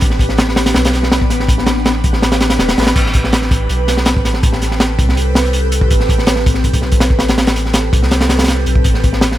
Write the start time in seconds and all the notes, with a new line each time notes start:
0.01 A1, kick, closed hi-hat
0.10 snare
0.19 kick, closed hi-hat
0.29 B3 D4 G4 B4, snare
0.38 snare, closed hi-hat
0.49 snare
0.56 snare, closed hi-hat
0.66 snare, closed hi-hat
0.74 B1, snare, closed hi-hat
0.85 snare, closed hi-hat
0.93 snare, closed hi-hat
1.03 snare
1.12 snare, closed hi-hat
1.22 A1, kick
1.30 snare, closed hi-hat
1.40 snare
1.48 kick, closed hi-hat
1.58 snare
1.66 snare, closed hi-hat
1.76 B3 D4 G4 B4, snare
1.85 snare, closed hi-hat
2.04 A1, kick, closed hi-hat
2.13 snare
2.22 snare, closed hi-hat
2.32 snare, closed hi-hat
2.41 snare, closed hi-hat
2.50 snare, closed hi-hat
2.59 E1, snare, closed hi-hat
2.69 snare, closed hi-hat
2.77 A1, snare, closed hi-hat
2.82 snare, closed hi-hat
2.87 snare, closed hi-hat
2.96 A1, kick, closed hi-hat, crash
3.06 snare
3.14 kick, closed hi-hat
3.24 C4 G4 A4 B4, snare
3.33 snare, closed hi-hat
3.42 snare
3.51 kick, closed hi-hat
3.69 B1, closed hi-hat
3.88 snare, closed hi-hat
3.97 snare
4.06 snare, closed hi-hat
4.17 A1, kick
4.25 snare, closed hi-hat
4.34 snare
4.43 kick, closed hi-hat
4.53 snare
4.62 snare, closed hi-hat
4.71 C4 G4 A4 B4, snare
4.80 snare, closed hi-hat
4.99 C2, kick, closed hi-hat
5.09 snare
5.17 closed hi-hat
5.35 snare, closed hi-hat
5.45 closed hi-hat
5.53 closed hi-hat
5.72 closed hi-hat
5.81 kick
5.91 A1, kick, closed hi-hat
6.00 snare
6.09 kick, closed hi-hat
6.18 C4 G4 A4 B4, snare
6.27 snare, closed hi-hat
6.36 snare
6.46 kick, closed hi-hat
6.54 snare
6.64 B1, kick, closed hi-hat
6.73 kick, closed hi-hat
6.82 snare
6.92 kick, closed hi-hat
7.00 snare, closed hi-hat
7.10 A1, kick
7.19 snare, closed hi-hat
7.28 snare, closed hi-hat
7.38 snare, closed hi-hat
7.47 snare, closed hi-hat
7.56 snare, closed hi-hat
7.66 snare
7.74 snare, closed hi-hat
7.93 C2, kick, closed hi-hat
8.03 snare
8.11 snare, closed hi-hat
8.21 snare, closed hi-hat
8.29 snare, closed hi-hat
8.39 snare, closed hi-hat
8.44 snare, closed hi-hat
8.48 snare, closed hi-hat
8.66 B1, closed hi-hat
8.75 kick
8.84 A1, kick, closed hi-hat
8.94 snare
9.04 kick, closed hi-hat
9.12 B3 D4 G4 B4, snare
9.21 snare, closed hi-hat
9.32 snare